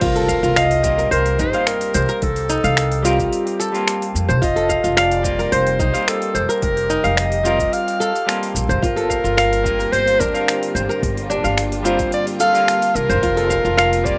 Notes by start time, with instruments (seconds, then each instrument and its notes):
Already playing: clean electric guitar G3 C4 F4 A#4, kora A4 C5
0.01 upright bass C2, kora F4, synth texture G4 G5, clarinet A#4, kick, open hi-hat, crash, impact, shaker
0.16 kora A4, open hi-hat
0.28 kora F5, kick, shaker
0.43 upright bass C2, kora F4, shaker
0.56 clarinet D#5, kora F5, finger snap, open hi-hat, shaker
0.71 open hi-hat
0.83 clean electric guitar G3 A#3 C4 F4, kick, shaker
0.98 kora A#4, open hi-hat, shaker
1.11 upright bass C2, clarinet A#4, kora C5, open hi-hat, shaker
1.26 open hi-hat
1.39 upright bass G1, kora D#4, clarinet C5, kick, shaker
1.52 clean electric guitar G3 C4 F4, kora F5, open hi-hat, shaker
1.56 clean electric guitar A#3
1.67 clarinet A#4, finger snap, open hi-hat, shaker
1.81 open hi-hat
1.94 upright bass C2, kora C5, shaker
2.09 kora A#4, shaker
2.22 upright bass C2, clarinet A4, kick, open hi-hat, shaker
2.36 open hi-hat
2.49 kora D#4, shaker
2.64 upright bass C2, kora F5, open hi-hat, shaker
2.77 finger snap, open hi-hat, shaker
2.92 open hi-hat
3.03 clean electric guitar G3 C4 F4, kora F4, clarinet G4, shaker
3.07 clean electric guitar A#4
3.19 kick, open hi-hat, shaker
3.33 open hi-hat, shaker
3.47 open hi-hat
3.60 kora A4, shaker
3.72 clean electric guitar G3 C4 F4, open hi-hat, shaker
3.76 clean electric guitar A#3
3.88 finger snap, open hi-hat, shaker
4.02 open hi-hat
4.15 upright bass F2, shaker
4.29 upright bass C2, kora C5, shaker
4.42 upright bass F1, kora F4, clarinet D#5, kick, open hi-hat, shaker
4.56 kora A4, open hi-hat
4.69 kora F5, kick, shaker
4.84 upright bass F1, kora F4, shaker
4.91 clarinet D#5
4.97 clarinet D5, kora F5, finger snap, open hi-hat, shaker
5.11 open hi-hat
5.23 clean electric guitar G3 C4 F4, kick, shaker
5.27 clean electric guitar A#3
5.39 kora A#4, open hi-hat, shaker
5.52 upright bass F1, kora C5, clarinet C5, open hi-hat, shaker
5.67 open hi-hat
5.79 upright bass C2, kora D#4, kick, shaker
5.92 clean electric guitar G3 C4 F4, kora F5, open hi-hat, shaker
5.96 clean electric guitar A#3
6.08 clarinet A4, finger snap, open hi-hat, shaker
6.22 open hi-hat
6.35 upright bass F1, kora C5, shaker
6.49 kora A#4, shaker
6.62 upright bass F1, clarinet A#4, kick, open hi-hat, shaker
6.77 open hi-hat
6.90 kora D#4, shaker
7.04 upright bass F1, kora F5, open hi-hat, shaker
7.17 clarinet D#5, finger snap, open hi-hat, shaker
7.32 open hi-hat
7.43 clean electric guitar G3 C4 F4 A#4, kora F4, shaker
7.60 kick, open hi-hat, shaker
7.73 clarinet F5, open hi-hat, shaker
7.88 open hi-hat
8.00 kora A4, shaker
8.15 open hi-hat, shaker
8.26 clean electric guitar G3 A#3 C4 F4, finger snap, open hi-hat, shaker
8.43 open hi-hat
8.55 upright bass A#1, shaker
8.69 upright bass F1, kora C5, shaker
8.82 upright bass G1, string section D3 G3 A#3 F4, kora F4, clarinet A#4, kick, open hi-hat, shaker
8.96 kora A4, open hi-hat
9.10 kora F5, kick, shaker
9.24 upright bass G1, kora F4, shaker
9.37 kora F5, finger snap, open hi-hat, shaker
9.53 open hi-hat
9.63 clean electric guitar G3 A#3 C4 F4, kick, shaker
9.79 kora A#4, open hi-hat, shaker
9.92 upright bass G1, kora C5, clarinet C5, open hi-hat, shaker
10.07 open hi-hat
10.20 upright bass D2, kora D4, clarinet A#4, kick, shaker
10.33 clean electric guitar G3 C4 F4 A#4, kora F5, open hi-hat, shaker
10.48 finger snap, open hi-hat, shaker
10.63 open hi-hat
10.75 upright bass G1, kora C5, shaker
10.89 kora A#4, shaker
11.03 upright bass G1, kick, open hi-hat, shaker
11.17 open hi-hat
11.30 kora D4, shaker
11.44 upright bass G1, kora F5, open hi-hat, shaker
11.58 finger snap, open hi-hat, shaker
11.72 open hi-hat
11.83 clean electric guitar G3 C4 F4 A#4, kora F4, clarinet C5, shaker
11.99 kick, open hi-hat, shaker
12.12 clarinet D5, open hi-hat, shaker
12.27 open hi-hat
12.40 kora A4, clarinet F5, shaker
12.53 clean electric guitar G3 A#3 C4 F4, open hi-hat, shaker
12.68 finger snap, open hi-hat, shaker
12.82 open hi-hat
12.95 upright bass C2, clarinet A#4, shaker
13.09 upright bass G1, kora C5, shaker
13.22 upright bass F1, string section D#3 A#3 C4, kora F4, kick, open hi-hat, shaker
13.37 kora A4, open hi-hat
13.50 kora F5, kick, shaker
13.65 upright bass F1, kora F4, shaker
13.77 kora F5, finger snap, open hi-hat, shaker
13.93 open hi-hat
14.04 clean electric guitar G3 A#3 C4 F4, clarinet D5, kick, shaker